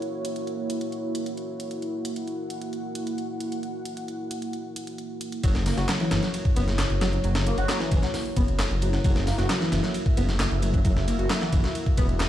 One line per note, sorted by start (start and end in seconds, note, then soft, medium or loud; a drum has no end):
0.00 5.40 A#3 medium
0.00 5.40 E4 medium
0.00 5.39 F#4 medium
0.00 1.81 C#5 medium
0.00 closed hi-hat soft
0.25 closed hi-hat medium
0.36 closed hi-hat soft
0.47 closed hi-hat soft
0.70 closed hi-hat medium
0.81 closed hi-hat soft
0.92 closed hi-hat soft
1.15 closed hi-hat medium
1.26 closed hi-hat soft
1.37 closed hi-hat soft
1.60 closed hi-hat medium
1.71 closed hi-hat soft
1.82 5.42 F#5 medium
1.82 closed hi-hat soft
2.05 closed hi-hat medium
2.16 closed hi-hat soft
2.28 closed hi-hat soft
2.50 closed hi-hat medium
2.62 closed hi-hat soft
2.73 closed hi-hat soft
2.95 closed hi-hat medium
3.07 closed hi-hat soft
3.18 closed hi-hat soft
3.40 closed hi-hat medium
3.52 closed hi-hat soft
3.63 closed hi-hat soft
3.85 closed hi-hat medium
3.97 closed hi-hat soft
4.08 closed hi-hat soft
4.31 closed hi-hat medium
4.42 closed hi-hat soft
4.53 closed hi-hat soft
4.76 closed hi-hat medium
4.87 closed hi-hat soft
4.98 closed hi-hat soft
5.21 closed hi-hat medium
5.32 closed hi-hat soft
5.43 5.71 F#1 loud
5.43 5.54 F#3 medium
5.43 12.29 A#3 medium
5.43 12.29 E4 medium
5.43 12.29 F#4 medium
5.43 9.03 C#5 medium
5.43 kick loud
5.43 closed hi-hat soft
5.43 ride medium
5.55 snare medium
5.55 closed hi-hat soft
5.66 5.75 A#3 medium
5.66 snare soft
5.66 closed hi-hat medium
5.66 open hi-hat medium
5.77 5.85 F#1 loud
5.77 5.86 F#4 medium
5.77 snare soft
5.77 closed hi-hat soft
5.89 5.97 F#3 loud
5.89 snare loud
5.89 clap loud
5.89 closed hi-hat soft
5.89 ride medium
6.00 6.22 E3 medium
6.00 snare soft
6.00 closed hi-hat soft
6.11 6.19 F#1 medium
6.11 snare loud
6.11 closed hi-hat medium
6.11 ride medium
6.23 6.28 F#3 medium
6.23 snare soft
6.23 closed hi-hat soft
6.34 closed hi-hat soft
6.34 ride medium
6.45 kick loud
6.45 closed hi-hat soft
6.56 6.84 F#1 loud
6.56 6.61 B3 loud
6.56 closed hi-hat medium
6.56 ride medium
6.68 snare soft
6.68 closed hi-hat soft
6.79 snare loud
6.79 clap loud
6.79 closed hi-hat soft
6.79 ride medium
6.90 7.18 F#1 medium
6.90 closed hi-hat soft
7.01 7.07 F#3 medium
7.01 snare loud
7.01 closed hi-hat medium
7.01 ride medium
7.13 7.18 F#3 medium
7.13 closed hi-hat soft
7.24 7.52 F#1 loud
7.24 7.35 F#3 medium
7.24 closed hi-hat soft
7.24 ride medium
7.35 snare loud
7.35 closed hi-hat soft
7.35 ride medium
7.47 7.55 A#3 medium
7.47 closed hi-hat medium
7.58 7.65 F#1 loud
7.58 7.67 F#4 medium
7.58 closed hi-hat soft
7.58 ride medium
7.69 7.78 F#3 loud
7.69 snare loud
7.69 clap loud
7.69 closed hi-hat soft
7.69 ride medium
7.80 8.02 E3 medium
7.80 snare medium
7.80 closed hi-hat soft
7.91 7.99 F#1 medium
7.91 kick medium
7.91 closed hi-hat medium
7.91 ride medium
8.03 8.08 F#3 medium
8.03 snare soft
8.03 closed hi-hat soft
8.14 snare soft
8.14 closed hi-hat soft
8.14 open hi-hat medium
8.26 closed hi-hat soft
8.36 8.65 F#1 medium
8.36 8.42 B3 loud
8.36 kick loud
8.36 closed hi-hat medium
8.36 ride medium
8.48 closed hi-hat soft
8.59 snare loud
8.59 clap loud
8.59 closed hi-hat soft
8.59 ride medium
8.71 8.99 F#1 medium
8.71 closed hi-hat soft
8.82 8.87 F#3 medium
8.82 closed hi-hat medium
8.82 ride medium
8.93 8.98 F#3 medium
8.93 snare soft
8.93 closed hi-hat soft
9.04 9.32 F#1 loud
9.04 9.15 F#3 medium
9.04 12.29 E5 medium
9.04 kick loud
9.04 closed hi-hat soft
9.04 ride medium
9.16 snare medium
9.16 closed hi-hat soft
9.27 9.36 A#3 medium
9.27 snare soft
9.27 closed hi-hat medium
9.27 open hi-hat medium
9.38 9.46 F#1 loud
9.38 9.47 F#4 medium
9.38 snare soft
9.38 closed hi-hat soft
9.49 9.58 F#3 loud
9.49 snare loud
9.49 clap loud
9.49 closed hi-hat soft
9.49 ride medium
9.61 9.82 E3 medium
9.61 snare soft
9.61 closed hi-hat soft
9.72 9.80 F#1 medium
9.72 snare medium
9.72 closed hi-hat medium
9.72 ride medium
9.83 9.88 F#3 medium
9.83 snare soft
9.83 closed hi-hat soft
9.94 closed hi-hat soft
9.94 ride medium
10.06 kick loud
10.06 closed hi-hat soft
10.17 10.45 F#1 medium
10.17 10.22 B3 loud
10.17 closed hi-hat medium
10.17 ride medium
10.29 snare soft
10.29 closed hi-hat soft
10.40 snare loud
10.40 clap loud
10.40 closed hi-hat soft
10.40 ride medium
10.51 10.79 F#1 medium
10.51 closed hi-hat soft
10.62 10.67 F#3 medium
10.62 closed hi-hat medium
10.62 ride medium
10.73 10.79 F#3 medium
10.73 kick medium
10.73 closed hi-hat soft
10.85 11.13 F#1 loud
10.85 10.96 F#3 medium
10.85 kick loud
10.85 closed hi-hat soft
10.85 ride medium
10.97 snare soft
10.97 closed hi-hat soft
11.07 11.16 A#3 medium
11.07 closed hi-hat medium
11.07 ride medium
11.19 11.26 F#1 loud
11.19 11.27 F#4 medium
11.19 closed hi-hat soft
11.30 11.39 F#3 loud
11.30 snare loud
11.30 clap loud
11.30 closed hi-hat soft
11.30 ride medium
11.41 11.63 E3 medium
11.41 snare medium
11.41 closed hi-hat soft
11.52 11.60 F#1 medium
11.52 kick loud
11.52 closed hi-hat medium
11.52 ride medium
11.64 11.69 F#3 medium
11.64 snare soft
11.64 closed hi-hat soft
11.75 closed hi-hat soft
11.75 ride medium
11.86 kick medium
11.86 closed hi-hat soft
11.97 12.26 E1 loud
11.97 12.03 B3 loud
11.97 kick loud
11.97 closed hi-hat medium
11.97 ride medium
12.09 closed hi-hat soft
12.20 snare loud
12.20 clap loud
12.20 closed hi-hat soft
12.20 ride medium